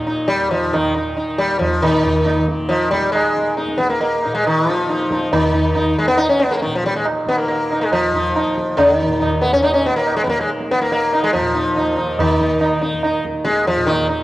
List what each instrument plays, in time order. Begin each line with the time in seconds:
Already playing: tanpura D#2 A#2 D#3
0.07 sitar D#4
0.28 sitar G3, tabla te
0.50 tanpura D#3, sitar F3, tabla tin, tabla ge
0.73 sitar D#3, tabla na, tabla ge
0.95 sitar D#4
1.13 tanpura D#3, sitar D#4
1.38 sitar G3, tabla te
1.59 sitar F3, tabla tin, tabla ge
1.82 tanpura A#2, sitar D#3 D#4, tabla na, tabla ge
2.03 sitar D#4, tabla ge
2.24 sitar D#4, tabla na, tabla ge
2.43 tanpura D#3
2.48 tabla te
2.60 tabla ge
2.68 sitar F3, tabla na
2.91 sitar G3, tabla ke
3.04 tanpura D#3
3.12 sitar G#3, tabla na
3.37 tabla ke
3.57 sitar D#4, tabla te
3.65 tanpura D#2, tabla te
3.77 sitar B3, tabla ke
3.89 sitar A#3, tabla te
4.00 sitar A#3, tabla tin
4.22 tanpura A#2, sitar D#4, tabla na
4.35 sitar G#3
4.44 sitar D#3, tabla na
4.66 sitar D#4, tabla ke
4.72 sitar F3
4.86 tanpura D#3, sitar D#4, tabla te
5.00 tabla te
5.11 sitar D#4, tabla ke
5.21 tabla te
5.33 sitar D#3, tabla na, tabla ge
5.46 tanpura D#3
5.54 sitar D#4, tabla ge
5.75 sitar D#4, tabla na, tabla ge
5.97 sitar G#3, tabla ge
6.06 tanpura D#2, sitar B3
6.18 sitar D#4, tabla na
6.30 sitar C#4
6.40 sitar B3, tabla ke
6.51 sitar G#3 A#3
6.58 sitar A#3
6.62 sitar D#3, tabla te
6.66 tanpura A#2
6.73 sitar F3, tabla te
6.84 sitar G3, tabla ke
6.95 sitar G#3, tabla te
7.06 tabla na
7.25 tanpura D#3, sitar B3, tabla ke
7.38 sitar A#3
7.48 sitar A#3, tabla tin
7.71 sitar D#4, tabla na
7.81 sitar G#3
7.86 tanpura D#3
7.92 sitar F3, tabla na, tabla ge
8.14 sitar D#4, tabla ge
8.36 sitar D#4, tabla na
8.45 tanpura D#2
8.58 tabla ke
8.77 sitar C#3, tabla na, tabla ge
8.97 sitar D#3
9.01 tabla ge
9.06 tanpura A#2
9.20 sitar D#4, tabla na, tabla ge
9.42 sitar B3, tabla te
9.53 sitar C#4, tabla ge
9.62 tanpura D#3, sitar D#4, tabla na
9.74 sitar C#4
9.86 sitar B3, tabla ke
9.96 sitar A#3
10.07 tabla na
10.17 sitar G#3
10.24 tanpura D#3, sitar B3
10.28 sitar A#3, tabla ke
10.41 sitar G#3
10.49 tabla te
10.61 tabla te
10.71 sitar B3, tabla ke
10.82 tanpura D#2, sitar A#3, tabla te
10.92 sitar A#3, tabla tin
11.13 sitar D#4, tabla na
11.24 sitar G#3
11.33 sitar F3, tabla na, tabla ge
11.41 tanpura A#2
11.55 sitar D#4, tabla te
11.76 sitar D#4, tabla na, tabla ge
11.96 sitar D#4, tabla ge
12.01 tanpura D#3
12.19 sitar D#3, tabla na, tabla ge
12.39 sitar D#4, tabla ge
12.57 tanpura D#3, sitar D#4, tabla na, tabla ge
12.81 sitar D#4, tabla te
12.93 tabla ge
13.03 sitar D#4, tabla na
13.18 tanpura D#2
13.25 tabla ke
13.44 sitar G#3, tabla ke
13.67 sitar F3, tabla tin, tabla ge
13.76 tanpura A#2
13.86 sitar D#3, tabla na, tabla ge
14.09 sitar D#4